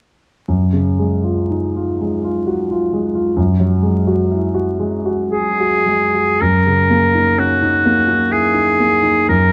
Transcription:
0, 0, Header, 1, 3, 480
1, 0, Start_track
1, 0, Key_signature, 6, "major"
1, 0, Tempo, 1032702
1, 224, Time_signature, 3, 2, 24, 8
1, 703, Tempo, 966184
1, 1183, Tempo, 914634
1, 2143, Tempo, 1008403
1, 2623, Tempo, 1079137
1, 3103, Tempo, 961538
1, 4665, End_track
2, 0, Start_track
2, 0, Title_t, "Oboe"
2, 0, Program_c, 0, 68
2, 2624, Note_on_c, 0, 68, 48
2, 3112, Note_on_c, 0, 70, 47
2, 3119, Note_off_c, 0, 68, 0
2, 3600, Note_on_c, 0, 66, 40
2, 3608, Note_off_c, 0, 70, 0
2, 4066, Note_on_c, 0, 68, 40
2, 4073, Note_off_c, 0, 66, 0
2, 4545, Note_off_c, 0, 68, 0
2, 4548, Note_on_c, 0, 70, 46
2, 4665, Note_off_c, 0, 70, 0
2, 4665, End_track
3, 0, Start_track
3, 0, Title_t, "Grand piano"
3, 0, Program_c, 1, 0
3, 224, Note_on_c, 1, 42, 27
3, 316, Control_c, 1, 64, 127
3, 338, Note_on_c, 1, 49, 20
3, 459, Note_on_c, 1, 56, 22
3, 533, Note_off_c, 1, 49, 0
3, 575, Note_on_c, 1, 65, 21
3, 652, Note_off_c, 1, 56, 0
3, 700, Note_on_c, 1, 63, 18
3, 773, Note_off_c, 1, 65, 0
3, 826, Note_off_c, 1, 63, 0
3, 827, Note_on_c, 1, 65, 24
3, 950, Note_on_c, 1, 56, 22
3, 1021, Note_off_c, 1, 65, 0
3, 1066, Note_on_c, 1, 65, 23
3, 1138, Note_off_c, 1, 56, 0
3, 1178, Note_on_c, 1, 66, 22
3, 1253, Note_off_c, 1, 65, 0
3, 1298, Note_off_c, 1, 66, 0
3, 1303, Note_on_c, 1, 65, 26
3, 1419, Note_on_c, 1, 56, 24
3, 1487, Note_off_c, 1, 65, 0
3, 1534, Note_on_c, 1, 65, 25
3, 1604, Note_off_c, 1, 56, 0
3, 1629, Note_off_c, 1, 42, 0
3, 1648, Note_on_c, 1, 42, 34
3, 1651, Note_off_c, 1, 65, 0
3, 1659, Control_c, 1, 64, 0
3, 1729, Control_c, 1, 64, 127
3, 1770, Note_on_c, 1, 54, 26
3, 1890, Note_on_c, 1, 56, 29
3, 1968, Note_off_c, 1, 54, 0
3, 2020, Note_on_c, 1, 66, 30
3, 2091, Note_off_c, 1, 56, 0
3, 2146, Note_on_c, 1, 64, 26
3, 2213, Note_off_c, 1, 66, 0
3, 2255, Note_on_c, 1, 66, 32
3, 2260, Note_off_c, 1, 64, 0
3, 2373, Note_on_c, 1, 56, 28
3, 2448, Note_off_c, 1, 66, 0
3, 2498, Note_on_c, 1, 66, 29
3, 2571, Note_off_c, 1, 56, 0
3, 2623, Note_on_c, 1, 68, 25
3, 2695, Note_off_c, 1, 66, 0
3, 2744, Note_off_c, 1, 68, 0
3, 2750, Note_on_c, 1, 66, 28
3, 2866, Note_on_c, 1, 56, 24
3, 2946, Note_off_c, 1, 66, 0
3, 2992, Note_on_c, 1, 66, 24
3, 3058, Note_off_c, 1, 56, 0
3, 3085, Note_off_c, 1, 42, 0
3, 3105, Note_off_c, 1, 66, 0
3, 3113, Control_c, 1, 64, 0
3, 3113, Note_on_c, 1, 42, 27
3, 3194, Control_c, 1, 64, 127
3, 3238, Note_on_c, 1, 49, 19
3, 3355, Note_on_c, 1, 58, 23
3, 3429, Note_off_c, 1, 49, 0
3, 3478, Note_on_c, 1, 63, 22
3, 3547, Note_off_c, 1, 58, 0
3, 3594, Note_on_c, 1, 61, 20
3, 3666, Note_off_c, 1, 63, 0
3, 3711, Note_off_c, 1, 61, 0
3, 3717, Note_on_c, 1, 63, 24
3, 3832, Note_on_c, 1, 58, 21
3, 3900, Note_off_c, 1, 63, 0
3, 3945, Note_on_c, 1, 63, 21
3, 4016, Note_off_c, 1, 58, 0
3, 4058, Note_on_c, 1, 64, 21
3, 4133, Note_off_c, 1, 63, 0
3, 4173, Note_on_c, 1, 63, 22
3, 4178, Note_off_c, 1, 64, 0
3, 4301, Note_on_c, 1, 58, 22
3, 4369, Note_off_c, 1, 63, 0
3, 4417, Note_on_c, 1, 63, 22
3, 4494, Note_off_c, 1, 58, 0
3, 4526, Note_off_c, 1, 42, 0
3, 4540, Note_off_c, 1, 63, 0
3, 4548, Note_on_c, 1, 42, 29
3, 4552, Control_c, 1, 64, 0
3, 4634, Control_c, 1, 64, 127
3, 4665, Note_off_c, 1, 42, 0
3, 4665, End_track
0, 0, End_of_file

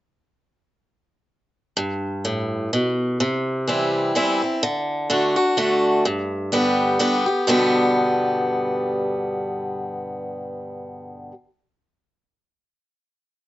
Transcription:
0, 0, Header, 1, 2, 480
1, 0, Start_track
1, 0, Key_signature, 1, "major"
1, 0, Tempo, 477327
1, 1779, Time_signature, 3, 2, 24, 8
1, 13552, End_track
2, 0, Start_track
2, 0, Title_t, "Steel-string acoustic guitar"
2, 0, Program_c, 0, 25
2, 1777, Note_on_c, 0, 43, 96
2, 2260, Note_on_c, 0, 45, 76
2, 2695, Note_off_c, 0, 43, 0
2, 2718, Note_off_c, 0, 45, 0
2, 2746, Note_on_c, 0, 47, 87
2, 3200, Note_off_c, 0, 47, 0
2, 3220, Note_on_c, 0, 48, 99
2, 3696, Note_on_c, 0, 52, 77
2, 3704, Note_on_c, 0, 55, 71
2, 3708, Note_on_c, 0, 60, 80
2, 3712, Note_on_c, 0, 64, 90
2, 4134, Note_off_c, 0, 48, 0
2, 4154, Note_off_c, 0, 52, 0
2, 4158, Note_off_c, 0, 55, 0
2, 4160, Note_off_c, 0, 60, 0
2, 4162, Note_off_c, 0, 64, 0
2, 4175, Note_on_c, 0, 52, 78
2, 4181, Note_on_c, 0, 55, 84
2, 4186, Note_on_c, 0, 60, 93
2, 4190, Note_on_c, 0, 64, 75
2, 4432, Note_off_c, 0, 52, 0
2, 4433, Note_off_c, 0, 64, 0
2, 4435, Note_off_c, 0, 55, 0
2, 4437, Note_off_c, 0, 60, 0
2, 4445, Note_on_c, 0, 64, 53
2, 4462, Note_on_c, 0, 60, 44
2, 4647, Note_off_c, 0, 64, 0
2, 4654, Note_on_c, 0, 50, 96
2, 4655, Note_off_c, 0, 60, 0
2, 5113, Note_off_c, 0, 50, 0
2, 5125, Note_on_c, 0, 50, 88
2, 5130, Note_on_c, 0, 57, 78
2, 5135, Note_on_c, 0, 62, 90
2, 5138, Note_on_c, 0, 66, 84
2, 5379, Note_off_c, 0, 66, 0
2, 5385, Note_off_c, 0, 50, 0
2, 5388, Note_off_c, 0, 57, 0
2, 5390, Note_off_c, 0, 62, 0
2, 5391, Note_on_c, 0, 66, 71
2, 5405, Note_on_c, 0, 62, 45
2, 5598, Note_off_c, 0, 62, 0
2, 5598, Note_off_c, 0, 66, 0
2, 5601, Note_on_c, 0, 50, 75
2, 5607, Note_on_c, 0, 57, 90
2, 5610, Note_on_c, 0, 62, 87
2, 5613, Note_on_c, 0, 66, 90
2, 6063, Note_off_c, 0, 50, 0
2, 6066, Note_off_c, 0, 57, 0
2, 6067, Note_off_c, 0, 62, 0
2, 6069, Note_off_c, 0, 66, 0
2, 6088, Note_on_c, 0, 43, 103
2, 6557, Note_on_c, 0, 50, 77
2, 6565, Note_on_c, 0, 55, 94
2, 6570, Note_on_c, 0, 59, 87
2, 6574, Note_on_c, 0, 67, 89
2, 7003, Note_off_c, 0, 43, 0
2, 7019, Note_off_c, 0, 50, 0
2, 7023, Note_off_c, 0, 55, 0
2, 7026, Note_off_c, 0, 59, 0
2, 7028, Note_off_c, 0, 67, 0
2, 7032, Note_on_c, 0, 50, 72
2, 7037, Note_on_c, 0, 55, 88
2, 7040, Note_on_c, 0, 59, 90
2, 7048, Note_on_c, 0, 67, 94
2, 7289, Note_off_c, 0, 67, 0
2, 7296, Note_off_c, 0, 50, 0
2, 7298, Note_off_c, 0, 55, 0
2, 7299, Note_off_c, 0, 59, 0
2, 7301, Note_on_c, 0, 67, 57
2, 7316, Note_on_c, 0, 59, 45
2, 7510, Note_off_c, 0, 67, 0
2, 7513, Note_on_c, 0, 43, 104
2, 7517, Note_off_c, 0, 59, 0
2, 7521, Note_on_c, 0, 47, 94
2, 7523, Note_on_c, 0, 50, 89
2, 7529, Note_on_c, 0, 55, 84
2, 7533, Note_on_c, 0, 59, 103
2, 7537, Note_on_c, 0, 67, 109
2, 11375, Note_off_c, 0, 43, 0
2, 11383, Note_off_c, 0, 47, 0
2, 11385, Note_off_c, 0, 50, 0
2, 11391, Note_off_c, 0, 55, 0
2, 11395, Note_off_c, 0, 59, 0
2, 11399, Note_off_c, 0, 67, 0
2, 13552, End_track
0, 0, End_of_file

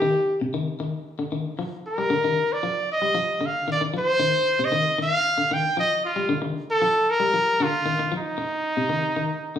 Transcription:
0, 0, Header, 1, 4, 480
1, 0, Start_track
1, 0, Tempo, 523104
1, 14, Time_signature, 4, 2, 24, 8
1, 8802, End_track
2, 0, Start_track
2, 0, Title_t, "Trumpet"
2, 0, Program_c, 0, 56
2, 0, Note_on_c, 0, 67, 81
2, 323, Note_off_c, 0, 67, 0
2, 1717, Note_on_c, 0, 70, 92
2, 2317, Note_on_c, 0, 74, 94
2, 2331, Note_off_c, 0, 70, 0
2, 2667, Note_off_c, 0, 74, 0
2, 2679, Note_on_c, 0, 75, 99
2, 3173, Note_on_c, 0, 77, 86
2, 3187, Note_off_c, 0, 75, 0
2, 3396, Note_off_c, 0, 77, 0
2, 3411, Note_on_c, 0, 74, 92
2, 3511, Note_off_c, 0, 74, 0
2, 3653, Note_on_c, 0, 72, 104
2, 4263, Note_on_c, 0, 75, 102
2, 4276, Note_off_c, 0, 72, 0
2, 4600, Note_off_c, 0, 75, 0
2, 4608, Note_on_c, 0, 77, 107
2, 5076, Note_on_c, 0, 79, 101
2, 5090, Note_off_c, 0, 77, 0
2, 5307, Note_off_c, 0, 79, 0
2, 5313, Note_on_c, 0, 75, 102
2, 5529, Note_off_c, 0, 75, 0
2, 5554, Note_on_c, 0, 65, 88
2, 5874, Note_off_c, 0, 65, 0
2, 6154, Note_on_c, 0, 69, 111
2, 6516, Note_on_c, 0, 70, 109
2, 6530, Note_off_c, 0, 69, 0
2, 7004, Note_on_c, 0, 65, 98
2, 7017, Note_off_c, 0, 70, 0
2, 7468, Note_off_c, 0, 65, 0
2, 7493, Note_on_c, 0, 63, 99
2, 8802, Note_off_c, 0, 63, 0
2, 8802, End_track
3, 0, Start_track
3, 0, Title_t, "Clean electric guitar"
3, 0, Program_c, 1, 27
3, 17, Note_on_c, 1, 51, 94
3, 147, Note_off_c, 1, 51, 0
3, 380, Note_on_c, 1, 48, 73
3, 444, Note_off_c, 1, 48, 0
3, 495, Note_on_c, 1, 51, 87
3, 626, Note_off_c, 1, 51, 0
3, 734, Note_on_c, 1, 51, 73
3, 865, Note_off_c, 1, 51, 0
3, 1090, Note_on_c, 1, 50, 69
3, 1157, Note_off_c, 1, 50, 0
3, 1212, Note_on_c, 1, 51, 77
3, 1344, Note_off_c, 1, 51, 0
3, 1457, Note_on_c, 1, 53, 83
3, 1587, Note_off_c, 1, 53, 0
3, 1818, Note_on_c, 1, 55, 70
3, 1883, Note_off_c, 1, 55, 0
3, 1928, Note_on_c, 1, 50, 95
3, 1997, Note_off_c, 1, 50, 0
3, 2060, Note_on_c, 1, 51, 69
3, 2190, Note_off_c, 1, 51, 0
3, 2414, Note_on_c, 1, 53, 78
3, 2546, Note_off_c, 1, 53, 0
3, 2769, Note_on_c, 1, 55, 72
3, 2837, Note_off_c, 1, 55, 0
3, 2887, Note_on_c, 1, 53, 88
3, 3021, Note_off_c, 1, 53, 0
3, 3126, Note_on_c, 1, 50, 78
3, 3260, Note_off_c, 1, 50, 0
3, 3375, Note_on_c, 1, 51, 84
3, 3442, Note_off_c, 1, 51, 0
3, 3499, Note_on_c, 1, 51, 73
3, 3564, Note_off_c, 1, 51, 0
3, 3612, Note_on_c, 1, 53, 80
3, 3745, Note_off_c, 1, 53, 0
3, 3850, Note_on_c, 1, 51, 90
3, 3983, Note_off_c, 1, 51, 0
3, 4214, Note_on_c, 1, 48, 71
3, 4280, Note_off_c, 1, 48, 0
3, 4331, Note_on_c, 1, 51, 85
3, 4464, Note_off_c, 1, 51, 0
3, 4574, Note_on_c, 1, 51, 75
3, 4706, Note_off_c, 1, 51, 0
3, 4934, Note_on_c, 1, 50, 69
3, 5000, Note_off_c, 1, 50, 0
3, 5059, Note_on_c, 1, 51, 81
3, 5189, Note_off_c, 1, 51, 0
3, 5296, Note_on_c, 1, 53, 80
3, 5427, Note_off_c, 1, 53, 0
3, 5654, Note_on_c, 1, 55, 75
3, 5720, Note_off_c, 1, 55, 0
3, 5771, Note_on_c, 1, 50, 90
3, 5839, Note_off_c, 1, 50, 0
3, 5889, Note_on_c, 1, 51, 76
3, 6022, Note_off_c, 1, 51, 0
3, 6256, Note_on_c, 1, 53, 87
3, 6387, Note_off_c, 1, 53, 0
3, 6606, Note_on_c, 1, 55, 74
3, 6674, Note_off_c, 1, 55, 0
3, 6733, Note_on_c, 1, 53, 83
3, 6864, Note_off_c, 1, 53, 0
3, 6976, Note_on_c, 1, 50, 82
3, 7107, Note_off_c, 1, 50, 0
3, 7209, Note_on_c, 1, 51, 83
3, 7276, Note_off_c, 1, 51, 0
3, 7334, Note_on_c, 1, 51, 75
3, 7399, Note_off_c, 1, 51, 0
3, 7448, Note_on_c, 1, 53, 80
3, 7580, Note_off_c, 1, 53, 0
3, 8048, Note_on_c, 1, 48, 74
3, 8114, Note_off_c, 1, 48, 0
3, 8161, Note_on_c, 1, 51, 82
3, 8294, Note_off_c, 1, 51, 0
3, 8409, Note_on_c, 1, 51, 69
3, 8540, Note_off_c, 1, 51, 0
3, 8771, Note_on_c, 1, 50, 72
3, 8802, Note_off_c, 1, 50, 0
3, 8802, End_track
4, 0, Start_track
4, 0, Title_t, "Muted clean electric guitar strokes"
4, 7688, Note_on_c, 9, 29, 92
4, 7780, Note_off_c, 9, 29, 0
4, 8802, End_track
0, 0, End_of_file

